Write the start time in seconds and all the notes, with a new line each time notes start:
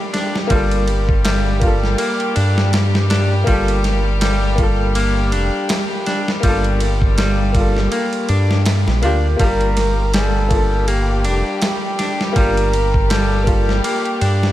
Already playing: G3 A#3 F4 G4 A4
0.13 D4, snare, ride
0.36 snare
0.47 G1 G3 A#3 F4, kick, ride
0.54 A4
0.71 ride
0.88 ride
1.09 kick
1.25 G3, snare, ride
1.59 A#3 F4, kick, ride
1.66 A4
1.84 snare
1.98 A#3, ride
2.20 ride
2.36 G2 D4, ride
2.58 snare
2.73 snare, ride
2.95 snare
3.10 D4, snare, ride
3.44 G1 G3 A#3 F4, kick, ride
3.51 A4
3.68 ride
3.84 snare, ride
4.21 G3, snare, ride
4.55 A#3 F4, kick, ride
4.63 A4
4.95 A#3, ride
5.32 F1 D4, ride
5.69 snare, ride
6.06 D4, snare, ride
6.28 snare
6.40 G1 G3 A#3 F4, kick, ride
6.48 A4
6.64 ride
6.80 ride
7.02 kick
7.18 G3, snare, ride
7.52 A#3 F4, kick, ride
7.59 A4
7.77 snare
7.92 A#3, ride
8.13 ride
8.29 G2 D4, ride
8.51 snare
8.66 snare, ride
8.88 A#1, snare
9.02 D2 A#3 D4 F4 G4, ride
9.37 G1 G3 A#3 F4 G4, kick, ride
9.41 G4 A#4
9.61 ride
9.77 snare, ride
10.14 G3 A4, snare, ride
10.48 A#3 F4, kick, ride
10.55 A4
10.88 A#3 G4, ride
11.25 F1 D4, ride
11.62 G4, snare, ride
11.99 D4, snare, ride
12.21 snare
12.33 G1 G3 A#3 F4, kick, ride
12.38 G4 A#4
12.57 ride
12.74 ride
12.94 kick
13.10 G3 A4, snare, ride
13.44 A#3 F4, kick, ride
13.51 A4
13.69 snare
13.84 A#3 G4, ride
14.05 ride
14.21 G2 D4, ride
14.43 snare